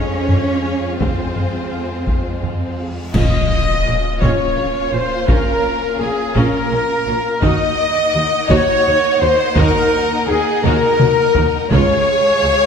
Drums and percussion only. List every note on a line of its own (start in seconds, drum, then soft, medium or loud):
0.29 taiko low-mid medium
1.01 taiko loud
1.36 taiko low-mid soft
2.07 taiko medium
2.43 taiko low-mid medium
3.14 concert bass drum medium
3.14 taiko loud
3.14 crash medium
4.22 taiko medium
5.28 taiko loud
6.36 taiko medium
7.42 taiko loud
8.50 taiko medium
9.56 taiko loud
10.64 taiko mid medium
11.00 taiko mid loud
11.35 taiko low loud
11.71 taiko loud